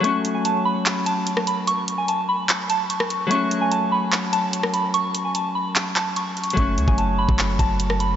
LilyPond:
<<
  \new Staff \with { instrumentName = "Synth bell" } { \time 4/4 \key fis \minor \tempo 4 = 147 cis'''8. gis''16 a''8 b''8 r8 a''4 b''8 | cis'''8. gis''16 a''8 b''8 r8 a''8 cis'''4 | cis'''8. gis''16 a''8 b''8 r8 a''4 b''8 | cis'''8. gis''16 a''8 b''8 r8 a''8 cis'''4 |
cis'''8. gis''16 a''8 b''8 r8 a''4 b''8 | }
  \new Staff \with { instrumentName = "Harp" } { \time 4/4 \key fis \minor <fis a cis' fis'>1~ | <fis a cis' fis'>1 | <fis a cis' fis'>1~ | <fis a cis' fis'>1 |
<fis a cis' fis'>1 | }
  \new Staff \with { instrumentName = "808-style bass" } { \clef bass \time 4/4 \key fis \minor r1 | r1 | r1 | r1 |
fis,,8 cis,16 fis,,4 fis,,8. fis,,4. | }
  \new DrumStaff \with { instrumentName = "Drums" } \drummode { \time 4/4 hh8 hh8 hh4 <hc hh>8 hh8 hh16 ss16 hh8 | hh8 hh8 hh4 <hc hh>8 hh8 hh16 ss16 hh8 | hh8 hh8 hh4 <hc hh>8 hh8 hh16 ss16 hh8 | hh8 hh8 hh4 <hc hh>8 <hc hh>8 \tuplet 3/2 { hh16 r16 r16 hh16 hh16 hh16 } |
<hh bd>8 hh16 bd16 hh8. bd16 <hc hh>8 <hh bd>8 hh16 ss16 hh8 | }
>>